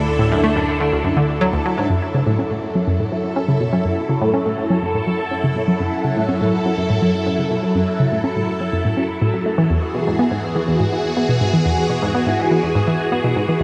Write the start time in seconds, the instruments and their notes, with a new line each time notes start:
Already playing: synth drone D2, string machine D3 D4 E4 A4
0.19 synth arpeggio sound A2
0.31 synth arpeggio sound F#2
0.44 synth arpeggio sound A3
0.56 synth arpeggio sound F#2
0.80 synth arpeggio sound D3
0.92 synth arpeggio sound D2
1.04 synth arpeggio sound F#2
1.17 synth arpeggio sound D3
1.41 synth arpeggio sound F#3
1.53 synth arpeggio sound D2
1.66 synth arpeggio sound F#3
1.78 synth arpeggio sound G#2
1.90 synth arpeggio sound F#2, string machine F#2 F#3 E4 A4
2.14 synth arpeggio sound C#3
2.27 synth arpeggio sound A2
2.39 synth arpeggio sound C#4
2.51 synth arpeggio sound A2
2.75 synth arpeggio sound F#3
2.88 synth arpeggio sound F#2
3.00 synth arpeggio sound A2
3.12 synth arpeggio sound F#3
3.36 synth arpeggio sound C#4
3.48 synth arpeggio sound C#3
3.60 synth arpeggio sound B2
3.73 synth arpeggio sound F#3
3.85 synth arpeggio sound F#2
4.09 synth arpeggio sound C#3
4.21 synth arpeggio sound A2
4.34 synth arpeggio sound C#4
4.46 synth arpeggio sound A2
4.70 synth arpeggio sound F#3
4.83 synth arpeggio sound F#2
4.95 synth arpeggio sound A2
5.07 synth arpeggio sound F#3
5.31 synth arpeggio sound C#4
5.44 synth arpeggio sound C#3
5.56 synth arpeggio sound B2
5.68 synth arpeggio sound F#3
5.80 synth arpeggio sound F#2
6.05 synth arpeggio sound C#3
6.17 synth arpeggio sound A2
6.29 synth arpeggio sound C#4
6.41 synth arpeggio sound A2
6.65 synth arpeggio sound F#3
6.78 synth arpeggio sound F#2
6.90 synth arpeggio sound A2
7.02 synth arpeggio sound F#3
7.26 synth arpeggio sound C#4
7.39 synth arpeggio sound C#3
7.51 synth arpeggio sound B2
7.63 synth arpeggio sound F#3
7.75 synth arpeggio sound F#2
8.00 synth arpeggio sound C#3
8.12 synth arpeggio sound A2
8.24 synth arpeggio sound C#4
8.36 synth arpeggio sound A2
8.61 synth arpeggio sound F#3
8.73 synth arpeggio sound F#2
8.85 synth arpeggio sound A2
8.97 synth arpeggio sound C#4
9.22 synth arpeggio sound A2
9.34 synth arpeggio sound F#3
9.46 synth arpeggio sound A3
9.58 synth arpeggio sound E3
9.70 string machine E2 E3 F#4 G#4, synth arpeggio sound E2
9.95 synth arpeggio sound B2
10.07 synth arpeggio sound G#2
10.19 synth arpeggio sound B3
10.31 synth arpeggio sound G#2
10.56 synth arpeggio sound E3
10.68 synth arpeggio sound E2
10.80 synth arpeggio sound G#2
10.92 synth arpeggio sound E3
11.17 synth arpeggio sound B3
11.29 synth arpeggio sound B2
11.41 synth arpeggio sound G#2
11.53 synth arpeggio sound E3
11.66 synth arpeggio sound E2
11.90 synth arpeggio sound B2
12.02 synth arpeggio sound G#2
12.15 synth arpeggio sound B3
12.27 synth arpeggio sound G#2
12.51 synth arpeggio sound E3
12.63 synth arpeggio sound E2
12.75 synth arpeggio sound G#2
12.88 synth arpeggio sound E3
13.12 synth arpeggio sound B3
13.24 synth arpeggio sound B2
13.36 synth arpeggio sound G#2
13.49 synth arpeggio sound E3